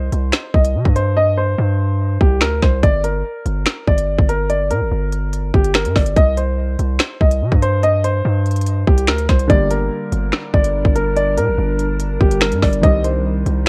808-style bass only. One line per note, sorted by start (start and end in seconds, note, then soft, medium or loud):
0.12 0.32 C2 loud
0.54 0.76 C2 loud
0.75 0.85 C3 loud
0.85 1.55 G2 loud
1.58 2.18 G2 loud
2.21 2.43 C2 loud
2.41 2.61 D2 loud
2.62 2.82 C2 loud
2.83 3.23 G1 loud
3.46 3.66 G1 loud
3.87 4.17 G1 loud
4.19 4.72 G1 loud
4.71 4.83 A#2 loud
4.81 4.91 G1 loud
4.92 5.52 G1 loud
5.54 5.87 G1 loud
5.85 5.95 G2 loud
5.96 6.16 G1 loud
6.17 6.77 C2 loud
6.79 6.99 C2 loud
7.21 7.43 C2 loud
7.42 7.51 C3 loud
7.52 8.22 G2 loud
8.25 8.85 G2 loud
8.87 9.10 C2 loud
9.08 9.28 D2 loud
9.29 9.49 C2 loud
9.50 9.90 G1 loud
10.12 10.32 G1 loud
10.54 10.84 G1 loud
10.85 11.39 G1 loud
11.37 11.49 A#2 loud
11.48 11.58 G1 loud
11.58 12.18 G1 loud
12.21 12.53 G1 loud
12.52 12.62 G2 loud
12.62 12.82 G1 loud
12.83 13.43 C2 loud
13.46 13.66 C2 loud